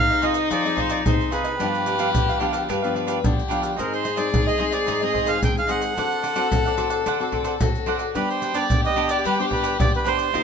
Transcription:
Already playing: C3 C4 D#4 G#4 F5
0.10 G#4 C5 D#5, pandeiro, maracas
0.22 C4 D#4 F4 G#4 C5 D#5, pandeiro, maracas
0.33 C5 D#5, pandeiro, maracas
0.50 F3 F4 G#4 C5 D5 D#5, pandeiro, maracas, surdo
0.65 C4 D#4 G#4 C5 D#5, pandeiro, maracas
0.76 F4 G#4 C5 D#5, pandeiro, surdo
0.89 F4 G#4 C5 D5 D#5, pandeiro, maracas
1.05 C3 C4 D#4 G#4 C5, pandeiro, maracas, surdo
1.21 pandeiro, maracas
1.31 C4 D#4 F4 G#4 B4 C5 D#5, pandeiro, maracas
1.44 G#4 C5 D#5, pandeiro, maracas
1.59 G2 F3 B3 D4 G4 B4 F5, pandeiro, maracas, surdo
1.75 pandeiro, maracas
1.86 D4 G4 B4 F5, pandeiro, maracas
1.98 F3 B3 D4 G4 B4 F5, pandeiro, maracas
2.14 D3, pandeiro, maracas, surdo
2.29 G4 B4 F5, pandeiro, maracas
2.40 F3 B3 D4 G4 B4 F5, pandeiro
2.52 G4 B4 F5, pandeiro, maracas
2.68 G2 D4 G4 B4 F5, pandeiro, maracas, surdo
2.82 F3 B3 D4 G4 B4 F5, pandeiro, maracas
2.94 D4 G4 B4 F5, pandeiro
3.07 D4 G4 B4 F5, pandeiro, maracas
3.24 D3 F3 B3 D4 G4, pandeiro, maracas, surdo
3.39 pandeiro, maracas
3.48 F3 B3 D4 G4 B4 F5, pandeiro, maracas
3.61 G4 B4 F5, pandeiro, maracas
3.76 G#2 G#3 C4 D#4 G#4 A#4 C5 D#5, pandeiro, maracas, surdo
3.94 C5, pandeiro, maracas
4.03 D#4 G#4 C5 D#5, pandeiro, maracas
4.16 G#3 C4 D#4 G#4 C5 D5 D#5, pandeiro, maracas
4.34 D#3, pandeiro, maracas, surdo
4.47 G#4 C5 D#5, pandeiro, maracas
4.58 G#3 C4 D#4 G#4 C5 D#5, pandeiro
4.71 G#4 C5 D5 D#5, pandeiro, maracas
4.86 G#2 D#4 G#4 C5 D#5, pandeiro, maracas, surdo
5.01 G#3 C4 D#4 G#4 C5 D#5, pandeiro, maracas
5.12 D#4 G#4 C5 D#5, pandeiro, surdo
5.25 D#4 G#4 C5 D#5 F5, pandeiro, maracas
5.42 D#3 G#3 C4 D#4 G5, pandeiro, maracas, surdo
5.58 F5, pandeiro, maracas
5.67 G#3 C4 D#4 G#4 C5 D#5 F#5, pandeiro, maracas
5.81 G#4 C5 D#5, pandeiro, maracas
5.97 D3 C4 D4 F#4 A4 C5 D5 F#5, pandeiro, maracas, surdo
6.12 pandeiro, maracas
6.22 D4 C5 D5 F#5, pandeiro, maracas
6.36 C4 D4 F#4 A4 C5 D5 F#5, pandeiro, maracas
6.52 A2, pandeiro, maracas, surdo
6.65 C5 D5 F#5, pandeiro, maracas
6.77 C4 D4 F#4 A4 C5 D5 F#5, pandeiro, maracas
6.90 C5 D5 F#5, pandeiro, maracas
7.06 D3 D4 C5 D5 F#5, pandeiro, maracas, surdo
7.20 C4 F#4 A4 C5 D5 F#5, pandeiro, maracas
7.32 D4 C5 D5 F#5, pandeiro, surdo
7.44 D4 C5 D5 F#5, pandeiro, maracas
7.60 A2 C4 F#4 A4, pandeiro, maracas, surdo
7.75 pandeiro, maracas
7.86 C4 D4 F#4 A4 C5 D5 F#5, pandeiro
7.99 C5 D5 F#5, pandeiro, maracas
8.14 G3 B3 D4 G4 B4 D5, pandeiro, maracas, surdo
8.30 C5, pandeiro, maracas
8.41 D4 G4 B4 D5, pandeiro, maracas
8.54 B3 D4 G4 B4 D5, pandeiro, maracas
8.70 D3, pandeiro, maracas, surdo
8.84 G4 B4 D5 D#5, pandeiro, maracas
8.96 B3 D4 G4 B4 D5, pandeiro
9.09 G4 B4 D5, pandeiro, maracas
9.24 G3 D4 G4 B4 D5, pandeiro, maracas, surdo
9.39 B3 D4 G4 B4 C5 D5, pandeiro, maracas
9.50 D4 G4 B4 D5, pandeiro, surdo
9.62 D4 G4 B4 D5, pandeiro, maracas
9.79 D3 B3 D4 G4 D5, pandeiro, maracas, surdo
9.94 B4, pandeiro, maracas
10.04 B3 D4 G4 B4 C5 D5, pandeiro, maracas
10.17 G4 B4 D5, pandeiro, maracas
10.33 C3 A#3 D#4 F4 G4 A#4 C5 D#5, pandeiro, maracas, surdo

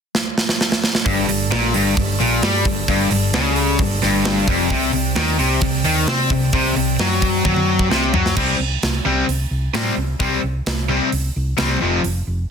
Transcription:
0.15 snare
0.38 snare
0.49 snare
0.61 snare
0.72 snare
0.84 snare
0.95 snare
1.05 G1 G2 G3 A4 D5, kick, open hi-hat
1.28 G1 G2, open hi-hat
1.51 A#1 A#2, snare, open hi-hat
1.74 G1 G2, open hi-hat
1.97 G1 G2, kick, open hi-hat
2.20 A#1 A#2, open hi-hat
2.42 G2 G3, snare, open hi-hat
2.65 G1 G2, kick, open hi-hat
2.88 G1 G2, kick, open hi-hat
3.11 G1 G2, open hi-hat
3.33 C#2 C#3, snare
3.56 open hi-hat
3.79 G1 G2, kick, open hi-hat
4.02 G1 G2, snare, open hi-hat
4.25 snare, open hi-hat
4.47 F1 F2, kick, open hi-hat
4.70 C2 C3 C4 D5 G5, kick, open hi-hat
4.93 C2 C3, open hi-hat
5.16 D#2 D#3, snare, open hi-hat
5.39 C2 C3, open hi-hat
5.61 C2 C3, kick, open hi-hat
5.84 D#2 D#3, open hi-hat
6.07 C3 C4, snare, open hi-hat
6.30 C2 C3, kick, open hi-hat
6.53 C2 C3, kick, open hi-hat
6.76 C2 C3, open hi-hat
6.99 F#2 F#3, snare, open hi-hat
7.22 kick, open hi-hat
7.45 F#2 F#3, kick, high tom
7.56 high tom
7.79 kick
7.90 C2 C3, snare
8.13 F#2 F#3, floor tom
8.26 snare
8.37 C2 C3 G3 C4, kick, crash
8.59 C2
8.82 C2, snare, open hi-hat
9.05 C2 C3 G3 C4
9.28 C2, open hi-hat
9.51 C2
9.74 A2 C3 G3 C4, snare, open hi-hat
9.97 C2
10.20 C2 C3 G3 C4, kick, open hi-hat
10.43 C2
10.66 C2, snare, open hi-hat
10.89 C3 G3 C4
11.12 C2, open hi-hat
11.36 C2
11.57 C2 C3 G3 C4, snare, open hi-hat
11.81 F1 F2 C3 F3
12.04 F1, open hi-hat
12.27 F1

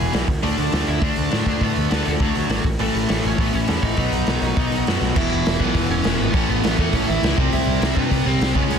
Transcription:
Already playing: E2 B2 E3 G#4 G#5
0.01 E1
0.12 B1 E2 B2 E3, snare, open hi-hat
0.28 D2, kick, open hi-hat
0.43 D2 D3 A3 D4 D5, open hi-hat
0.58 D2, open hi-hat
0.72 D2 D3 A3 D4, snare, open hi-hat
0.87 D2 E4 E5, open hi-hat
1.01 D2 D3 A3 D4 D5, kick, open hi-hat
1.16 D2, open hi-hat
1.31 A2 D3 A3 D4, snare, open hi-hat
1.46 D2 D4 D5, kick, open hi-hat
1.61 A2 D3 A3 B3 D4 B4, kick, open hi-hat
1.76 D2, open hi-hat
1.90 D2 D3 A3 D4, snare, open hi-hat
2.06 D2 A3 A4, open hi-hat
2.20 D2 D3 F#3 A3 D4 F#4, kick, open hi-hat
2.35 D2, open hi-hat
2.49 G#1 D3 A3 D4, snare, open hi-hat
2.64 A1, kick, open hi-hat
2.79 A1 A2 E3 A3 A4, open hi-hat
2.95 A1, open hi-hat
3.09 A1 A2 E3 A3, snare, open hi-hat
3.23 A1 C#4 C#5, open hi-hat
3.38 A1 A2 E3 A3 B3 B4, kick, open hi-hat
3.52 A1 C#4 C#5, open hi-hat
3.67 E2 A2 E3 A3, snare, open hi-hat
3.83 A1 D#4 D#5, kick, open hi-hat
3.97 B1 B2 F#3 B3, kick, open hi-hat
4.13 B1, open hi-hat
4.27 B1 B2 F#3 B3, snare, open hi-hat
4.42 B1, open hi-hat
4.57 B1 B2 F#3 B3, kick, open hi-hat
4.72 B1, open hi-hat
4.87 F#2 B2 F#3 B3, snare, open hi-hat
5.01 B1, snare
5.16 E1 E2 B2 E3 E4 E5, kick, crash
5.32 E1
5.46 E1, snare, open hi-hat
5.59 B1 E2 B2 E3 B3 B4, kick
5.74 E1 B3 B4, kick, open hi-hat
5.89 E1 C#4 C#5
6.04 E1 E2 B2 E3, snare, open hi-hat
6.19 G#1 B3 B4
6.33 A1 A2 E3 A3 C#4 C#5, kick, open hi-hat
6.49 A1 B3 B4
6.64 A1, snare, open hi-hat
6.78 E2 A2 E3 A3 A4, kick
6.93 A1 C#4 C#5, kick, open hi-hat
7.07 A1 E4 E5
7.22 C#2 A2 E3 A3, snare, open hi-hat
7.37 C2 C3 G3 C4, kick
7.52 C2 E4 E5, open hi-hat
7.67 C2
7.81 C2 C3 G3 C4, snare, open hi-hat
7.96 G2 B3 B4, kick
8.11 C2 B3 B4, kick, open hi-hat
8.26 C2 C3 G3 C4 C5
8.40 C2, snare, open hi-hat
8.55 C#2 C#3 G#3 B3 C#4 B4, kick
8.70 C#2 C#4 C#5, open hi-hat

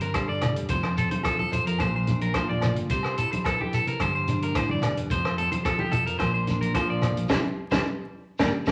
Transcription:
Already playing: G1 G2
0.01 D4 A#4, closed hi-hat, shekere
0.14 G3 A4 C5, kick, cross-stick, closed hi-hat, low agogo, shekere
0.29 G1 D5
0.41 cross-stick, closed hi-hat, low conga, low agogo, shekere
0.56 E1, closed hi-hat, shekere
0.69 F1 F2 C5, kick, closed hi-hat, shekere
0.83 F2, cross-stick, low agogo
0.98 C4 A4, closed hi-hat, shekere
1.11 C5, closed hi-hat, high conga
1.23 F3 A4, kick, cross-stick, closed hi-hat, low agogo, shekere
1.39 A4, high conga
1.52 C5, closed hi-hat, low conga, shekere
1.67 F2 A#4, closed hi-hat, shekere
1.79 A#1 A#2 C5, kick, cross-stick, closed hi-hat, high conga, low agogo, shekere
1.96 C5
2.07 D4, closed hi-hat, high conga, shekere
2.21 A#4, closed hi-hat
2.34 F4 C5, kick, cross-stick, closed hi-hat, low agogo, shekere
2.50 A#1 D5, high conga
2.61 cross-stick, closed hi-hat, low conga, low agogo, shekere
2.76 G1, closed hi-hat, shekere
2.90 C2 C3 C5, kick, closed hi-hat, shekere
3.03 C3, cross-stick, low agogo
3.17 E4 A4, closed hi-hat, shekere
3.32 C5, closed hi-hat, high conga
3.44 E3 A4, kick, cross-stick, closed hi-hat, low agogo, shekere
3.61 G4, high conga
3.73 A4, closed hi-hat, shekere
3.87 C3 A#4, closed hi-hat, shekere
4.00 G1 G2 C5, kick, cross-stick, closed hi-hat, high conga, low agogo, shekere
4.15 C5
4.28 D4, closed hi-hat, high conga, shekere
4.42 A#4, closed hi-hat
4.55 A2 C5, kick, cross-stick, closed hi-hat, low agogo, shekere
4.69 G1 D5, high conga
4.82 G2, cross-stick, closed hi-hat, low conga, low agogo, shekere
4.97 E1, closed hi-hat, shekere
5.10 F1 F2 C5, kick, closed hi-hat, shekere
5.25 F2, cross-stick, low agogo
5.38 C4 A4, closed hi-hat
5.52 C5, closed hi-hat, high conga
5.65 F3 A4, kick, cross-stick, closed hi-hat, low agogo, shekere
5.79 G4, high conga
5.92 A4, closed hi-hat, low conga, shekere
6.07 F2 A#4, closed hi-hat, shekere
6.19 A#1 A#2 C5, kick, cross-stick, closed hi-hat, high conga, low agogo, shekere
6.34 C5
6.47 D4, closed hi-hat, high conga, shekere
6.61 A#4, closed hi-hat
6.75 F3 F4 C5, kick, cross-stick, closed hi-hat, low agogo, shekere
6.90 A#1 D5
7.02 cross-stick, closed hi-hat, low conga, low agogo, shekere
7.17 A#1, closed hi-hat, shekere
7.29 C2 E3 G3 C4 E4 G4 C5, kick, snare, high conga, low agogo, shekere
7.71 C2 E3 G3 C4 E4 G4 C5, kick, snare, high conga, low agogo, shekere
8.39 G1 G3 A#3 D4 G4 A#4 D5, kick, snare, high conga, low agogo, shekere
8.66 G1 G3 A#3 D4 A#4 D5, kick, snare, high conga, low agogo, shekere

